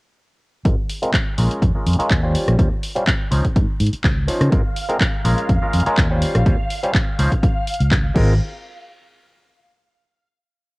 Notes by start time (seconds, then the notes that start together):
0.65 G#1 G#3 C4 F4 A#4, kick, closed hi-hat
0.90 open hi-hat
1.02 G#3 C4 F4 A#4, closed hi-hat
1.14 kick, clap, closed hi-hat
1.38 A#1 G#3 C#4 F4 A#4, open hi-hat
1.51 closed hi-hat
1.62 F2, kick, closed hi-hat
1.75 G#3 C#4 F4 A#4
1.86 F2, open hi-hat
1.93 closed hi-hat
1.99 G#3 C#4 F4 A#4, muted fingered electric bass stroke, closed hi-hat
2.10 D#2, kick, clap, closed hi-hat
2.23 G3 C#4 F4 C5
2.35 muted fingered electric bass stroke, open hi-hat
2.48 A#1, cross-stick, closed hi-hat
2.59 D#2 G3 C#4 F4 C5, kick, closed hi-hat
2.83 open hi-hat
2.95 G3 C#4 F4 C5, closed hi-hat
3.07 kick, clap, closed hi-hat
3.31 C#2 F3 C#4 D#4 C5, open hi-hat
3.44 kick, closed hi-hat
3.56 G#2, kick, closed hi-hat
3.80 G#2, open hi-hat
3.86 closed hi-hat
3.93 muted fingered electric bass stroke, closed hi-hat
4.04 C#2, kick, clap, closed hi-hat
4.28 F3 C#4 D#4 C5, muted fingered electric bass stroke, open hi-hat
4.41 C#3, cross-stick, closed hi-hat
4.52 G#1 G#3 C4 F4 A#4 F5, kick, closed hi-hat
4.77 open hi-hat
4.89 G#3 C4 F4 A#4, closed hi-hat
5.01 kick, clap, closed hi-hat
5.25 A#1 G#3 C#4 F4 A#4, open hi-hat
5.38 closed hi-hat
5.49 F2, kick, closed hi-hat
5.62 G#3 C#4 F4 A#4
5.73 F2, open hi-hat
5.80 closed hi-hat
5.86 G#3 C#4 F4 A#4, muted fingered electric bass stroke, closed hi-hat
5.98 D#2, kick, clap, closed hi-hat
6.11 G3 C#4 F4 C5
6.22 muted fingered electric bass stroke, open hi-hat
6.35 A#1, cross-stick, closed hi-hat
6.46 D#2 G3 C#4 F4 C5, kick, closed hi-hat
6.70 open hi-hat
6.83 G3 C#4 F4 C5, closed hi-hat
6.94 kick, clap, closed hi-hat
7.19 C#2 F3 C#4 D#4 C5, open hi-hat
7.32 kick, closed hi-hat
7.43 kick, closed hi-hat
7.67 open hi-hat
7.74 closed hi-hat
7.80 C#2, closed hi-hat
7.91 kick, clap, closed hi-hat
8.14 G#1 G#3 C4 F4 A#4, kick, crash